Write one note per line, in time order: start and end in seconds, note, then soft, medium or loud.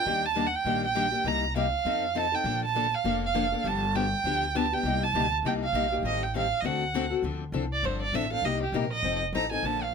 0.00 0.27 G5 loud
0.06 0.54 D#2 medium
0.06 0.24 D#3 medium
0.06 0.24 G3 medium
0.06 0.25 A#3 medium
0.06 0.25 D4 medium
0.06 0.25 G4 medium
0.25 0.48 A5 loud
0.35 0.46 D#3 medium
0.35 0.46 G3 medium
0.35 0.46 A#3 medium
0.35 0.46 D4 medium
0.35 0.46 G4 medium
0.46 0.57 F#5 medium
0.55 0.84 G5 loud
0.65 1.13 A#1 medium
0.65 0.84 D#3 medium
0.65 0.85 G3 medium
0.65 0.85 A#3 medium
0.65 0.85 D4 medium
0.65 0.85 G4 medium
0.85 1.29 G5 loud
0.95 1.05 D#3 medium
0.95 1.06 G3 medium
0.95 1.06 A#3 medium
0.95 1.06 D4 medium
0.95 1.06 G4 loud
1.11 1.25 A#3 soft
1.11 1.25 D4 medium
1.11 1.24 G4 medium
1.24 1.73 C2 medium
1.24 1.44 C3 medium
1.24 1.44 G3 medium
1.24 1.44 A#3 medium
1.24 1.44 D#4 medium
1.24 1.44 G4 medium
1.24 1.56 A#5 loud
1.55 1.66 C3 medium
1.55 1.66 G3 medium
1.55 1.66 A#3 medium
1.55 1.66 D#4 medium
1.55 1.66 G4 medium
1.55 2.19 F5 medium
1.85 2.33 F2 medium
1.85 2.04 F3 medium
1.85 2.04 C4 medium
1.85 2.05 D#4 medium
1.85 2.05 A4 medium
2.15 2.25 F3 medium
2.15 2.25 C4 medium
2.15 2.26 D#4 medium
2.15 2.26 A4 medium
2.15 2.36 A5 loud
2.32 2.45 C4 soft
2.32 2.45 D#4 medium
2.32 2.44 A4 medium
2.32 2.63 G5 medium
2.44 2.92 A#1 medium
2.44 2.64 D3 medium
2.44 2.64 F3 medium
2.44 2.64 A#3 medium
2.44 2.64 D4 medium
2.44 2.64 A4 medium
2.64 2.96 A5 medium
2.75 2.85 D3 medium
2.75 2.86 F3 medium
2.75 2.86 A#3 medium
2.75 2.86 D4 medium
2.75 2.86 A4 medium
2.94 3.23 F5 loud
3.04 3.53 F1 medium
3.04 3.24 D3 medium
3.04 3.24 F3 medium
3.04 3.24 A#3 medium
3.04 3.24 D4 medium
3.04 3.24 A4 medium
3.25 3.69 F5 loud
3.34 3.45 D3 medium
3.34 3.45 F3 medium
3.34 3.45 A#3 loud
3.34 3.45 D4 medium
3.34 3.46 A4 medium
3.52 3.65 A#3 medium
3.52 3.64 D4 medium
3.52 3.64 A4 medium
3.64 4.12 G1 medium
3.64 3.83 D3 medium
3.64 3.84 F3 medium
3.64 3.84 B3 medium
3.64 3.84 D4 medium
3.64 3.84 G4 medium
3.64 3.97 A5 medium
3.95 4.05 D3 medium
3.95 4.05 F3 medium
3.95 4.05 B3 medium
3.95 4.05 D4 medium
3.95 4.06 G4 medium
3.95 4.58 G5 loud
4.24 4.72 D2 medium
4.24 4.44 D3 medium
4.24 4.44 F3 medium
4.24 4.44 B3 medium
4.24 4.44 D4 medium
4.24 4.44 G4 medium
4.55 4.65 D3 medium
4.55 4.65 F3 medium
4.55 4.65 B3 loud
4.55 4.65 D4 loud
4.55 4.66 G4 loud
4.55 4.75 A5 medium
4.72 4.85 B3 medium
4.72 4.85 D4 medium
4.72 4.84 G4 medium
4.72 5.05 G5 medium
4.83 5.08 C2 loud
4.83 5.04 C3 medium
4.83 5.04 G3 medium
4.83 5.04 A#3 medium
4.83 5.04 D#4 medium
4.83 5.04 G4 medium
5.03 5.32 A5 loud
5.14 5.39 D2 medium
5.14 5.25 C3 medium
5.14 5.25 G3 medium
5.14 5.25 A#3 medium
5.14 5.25 D#4 medium
5.14 5.25 G4 loud
5.43 5.69 C2 medium
5.43 5.64 C3 medium
5.43 5.64 G3 medium
5.43 5.64 A#3 medium
5.43 5.64 D#4 medium
5.43 5.64 G4 medium
5.43 5.54 G5 medium
5.63 5.90 F5 medium
5.73 5.99 A#1 medium
5.73 5.85 C3 medium
5.73 5.85 G3 medium
5.73 5.85 A#3 loud
5.73 5.85 D#4 loud
5.73 5.85 G4 loud
5.92 6.05 A#3 soft
5.92 6.05 D#4 medium
5.92 6.04 G4 medium
6.03 6.51 A1 medium
6.03 6.23 D#3 medium
6.03 6.24 G3 medium
6.03 6.24 C4 medium
6.03 6.24 G4 medium
6.03 6.24 A4 medium
6.03 6.24 D#5 medium
6.23 6.35 G5 medium
6.34 6.45 D#3 medium
6.34 6.45 G3 medium
6.34 6.45 C4 medium
6.34 6.45 G4 medium
6.34 6.45 A4 medium
6.34 6.62 F5 medium
6.60 7.11 D2 medium
6.60 6.83 D3 medium
6.60 6.67 D#5 medium
6.64 6.83 A3 medium
6.64 6.83 C4 medium
6.64 6.83 F#4 medium
6.64 6.84 A4 medium
6.64 7.12 F#5 medium
6.94 7.04 D3 medium
6.94 7.05 A3 medium
6.94 7.05 C4 loud
6.94 7.05 F#4 medium
6.94 7.05 A4 loud
7.10 7.23 C4 soft
7.10 7.23 F#4 medium
7.10 7.23 A4 medium
7.22 7.52 D2 medium
7.22 7.42 D3 medium
7.22 7.43 F3 medium
7.22 7.43 C4 medium
7.22 7.43 D4 medium
7.22 7.43 A4 medium
7.52 7.82 C2 medium
7.52 7.64 D3 medium
7.52 7.64 F3 medium
7.52 7.64 C4 medium
7.52 7.64 D4 medium
7.52 7.64 A4 medium
7.73 7.87 D5 medium
7.83 8.12 G1 medium
7.83 8.02 D3 medium
7.83 8.03 F3 medium
7.83 8.03 C4 medium
7.83 8.03 D4 medium
7.83 8.03 A4 medium
7.83 8.01 C5 medium
8.02 8.17 D5 medium
8.13 8.41 A1 medium
8.13 8.24 D3 medium
8.13 8.24 F3 medium
8.13 8.24 C4 medium
8.13 8.25 D4 medium
8.13 8.25 A4 loud
8.13 8.32 E5 medium
8.31 8.44 C4 soft
8.31 8.44 D4 medium
8.31 8.43 A4 medium
8.31 8.46 F5 medium
8.42 8.72 C2 medium
8.42 8.63 C3 medium
8.42 8.63 G3 medium
8.42 8.63 A#3 medium
8.42 8.63 D#4 medium
8.42 8.63 G4 medium
8.42 8.62 D#5 medium
8.63 8.77 G4 medium
8.72 9.02 A#1 medium
8.72 8.84 C3 medium
8.72 8.84 G3 medium
8.72 8.84 A#3 medium
8.72 8.84 D#4 medium
8.72 8.85 G4 medium
8.72 8.92 A#4 medium
8.93 9.20 D#5 medium
9.03 9.32 F1 medium
9.03 9.22 F3 medium
9.03 9.23 C4 medium
9.03 9.23 D#4 medium
9.03 9.23 A4 medium
9.33 9.62 A1 medium
9.33 9.44 F3 medium
9.33 9.45 C4 loud
9.33 9.45 D#4 medium
9.33 9.45 A4 loud
9.33 9.51 A#5 medium
9.51 9.64 C4 soft
9.51 9.64 D#4 medium
9.51 9.63 A4 medium
9.51 9.66 G#5 medium
9.63 9.92 A#1 medium
9.63 9.83 D3 medium
9.63 9.83 F3 medium
9.63 9.83 A#3 medium
9.63 9.84 D4 medium
9.63 9.83 A4 medium
9.63 9.84 A5 medium
9.83 9.94 F5 medium